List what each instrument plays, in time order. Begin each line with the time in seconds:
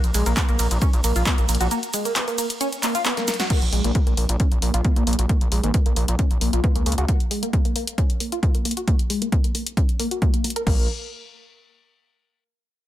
0.04 analog synth bass A#1, closed hi-hat, shaker
0.14 analog synth bass A#1, synth arpeggio sound G#3, open hi-hat, ride, shaker
0.26 analog synth bass A#1, synth arpeggio sound A#3, closed hi-hat, shaker
0.37 synth arpeggio sound B3, kick, clap, closed hi-hat, shaker
0.49 analog synth bass A#1, synth arpeggio sound A#3, closed hi-hat, shaker
0.59 analog synth bass A#1, synth arpeggio sound A#3, open hi-hat, ride, shaker
0.71 analog synth bass A#1, closed hi-hat, shaker
0.82 synth arpeggio sound C#4, kick, closed hi-hat, shaker
0.93 analog synth bass A#1, closed hi-hat, shaker
1.04 analog synth bass A#1, synth arpeggio sound A#3, open hi-hat, ride, shaker
1.16 analog synth bass A#1, synth arpeggio sound F4, closed hi-hat, shaker
1.26 synth arpeggio sound B3, kick, clap, closed hi-hat, shaker
1.38 analog synth bass A#1, synth arpeggio sound A#3, closed hi-hat, shaker
1.49 analog synth bass A#1, synth arpeggio sound A#3, open hi-hat, ride, shaker
1.55 closed hi-hat
1.60 analog synth bass A#1, synth arpeggio sound F#4, closed hi-hat, shaker
1.71 synth arpeggio sound A#3, closed hi-hat, shaker
1.83 closed hi-hat, shaker
1.94 synth arpeggio sound G#3, open hi-hat, ride, shaker
2.05 synth arpeggio sound A#3, closed hi-hat, shaker
2.16 synth arpeggio sound B3, clap, closed hi-hat, shaker
2.28 synth arpeggio sound A#3, open hi-hat, shaker
2.38 synth arpeggio sound A#3, open hi-hat, ride, shaker
2.50 closed hi-hat, shaker
2.61 synth arpeggio sound C#4, closed hi-hat, shaker
2.73 closed hi-hat, shaker
2.83 synth arpeggio sound A#3, clap, open hi-hat, ride, shaker
2.95 synth arpeggio sound F4, closed hi-hat, shaker
3.05 synth arpeggio sound B3, clap, closed hi-hat, shaker
3.17 synth arpeggio sound A#3, snare, closed hi-hat, shaker
3.28 synth arpeggio sound A#3, snare, open hi-hat, ride, shaker
3.34 closed hi-hat
3.40 synth arpeggio sound F#4, snare, closed hi-hat, shaker
3.50 synth arpeggio sound A#3, kick, closed hi-hat, crash
3.62 analog synth bass A#1, closed hi-hat
3.73 analog synth bass A#1, synth arpeggio sound G#3, open hi-hat
3.84 analog synth bass A#1, synth arpeggio sound A#3, closed hi-hat
3.95 synth arpeggio sound B3, kick, closed hi-hat
4.07 analog synth bass A#1, synth arpeggio sound A#3, closed hi-hat
4.17 analog synth bass A#1, synth arpeggio sound A#3, open hi-hat
4.29 analog synth bass A#1, closed hi-hat
4.40 synth arpeggio sound C#4, kick, closed hi-hat
4.52 analog synth bass A#1, closed hi-hat
4.62 analog synth bass A#1, synth arpeggio sound A#3, open hi-hat
4.74 analog synth bass A#1, synth arpeggio sound F4, closed hi-hat
4.85 synth arpeggio sound B3, kick, closed hi-hat
4.96 analog synth bass A#1, synth arpeggio sound A#3, closed hi-hat
5.07 analog synth bass A#1, synth arpeggio sound A#3, open hi-hat
5.13 closed hi-hat
5.19 analog synth bass A#1, synth arpeggio sound F#4, closed hi-hat
5.29 synth arpeggio sound A#3, kick, closed hi-hat
5.41 analog synth bass A#1, closed hi-hat
5.52 analog synth bass A#1, synth arpeggio sound G#3, open hi-hat
5.64 analog synth bass G#1, synth arpeggio sound A#3, closed hi-hat
5.74 synth arpeggio sound B3, kick, closed hi-hat
5.86 analog synth bass A#1, synth arpeggio sound A#3, closed hi-hat
5.96 analog synth bass A#1, synth arpeggio sound A#3, open hi-hat
6.08 analog synth bass A#1, closed hi-hat
6.19 synth arpeggio sound C#4, kick, closed hi-hat
6.31 analog synth bass A#1, closed hi-hat
6.41 analog synth bass A#1, synth arpeggio sound A#3, open hi-hat
6.53 analog synth bass A#1, synth arpeggio sound F4, closed hi-hat
6.64 synth arpeggio sound B3, kick, closed hi-hat
6.76 analog synth bass C#2, synth arpeggio sound A#3, closed hi-hat
6.86 analog synth bass C#2, synth arpeggio sound A#3, open hi-hat
6.92 closed hi-hat
6.98 analog synth bass C#2, synth arpeggio sound F#4, closed hi-hat
7.09 synth arpeggio sound A#3, kick, closed hi-hat
7.20 closed hi-hat
7.31 synth arpeggio sound G#3, open hi-hat
7.43 synth arpeggio sound A#3, closed hi-hat
7.53 synth arpeggio sound B3, kick, closed hi-hat
7.65 synth arpeggio sound A#3, closed hi-hat
7.76 synth arpeggio sound A#3, open hi-hat
7.87 closed hi-hat
7.98 synth arpeggio sound C#4, kick, closed hi-hat
8.10 closed hi-hat
8.20 synth arpeggio sound A#3, open hi-hat
8.32 synth arpeggio sound F4, closed hi-hat
8.43 synth arpeggio sound B3, kick, closed hi-hat
8.55 synth arpeggio sound A#3, closed hi-hat
8.65 synth arpeggio sound A#3, open hi-hat
8.71 closed hi-hat
8.77 synth arpeggio sound F#4, closed hi-hat
8.88 synth arpeggio sound A#3, kick, closed hi-hat
8.99 closed hi-hat
9.10 synth arpeggio sound G#3, open hi-hat
9.22 synth arpeggio sound A#3, closed hi-hat
9.32 synth arpeggio sound B3, kick, closed hi-hat
9.44 synth arpeggio sound A#3, closed hi-hat
9.55 synth arpeggio sound A#3, open hi-hat
9.67 closed hi-hat
9.77 synth arpeggio sound C#4, kick, closed hi-hat
9.89 closed hi-hat
9.99 synth arpeggio sound A#3, open hi-hat
10.11 synth arpeggio sound F#4, closed hi-hat
10.22 synth arpeggio sound A#3, kick, closed hi-hat
10.34 synth arpeggio sound A#3, closed hi-hat
10.44 synth arpeggio sound A#3, open hi-hat
10.50 closed hi-hat
10.56 synth arpeggio sound A#4, closed hi-hat
10.67 analog synth bass A#1, synth arpeggio sound A#3, kick, crash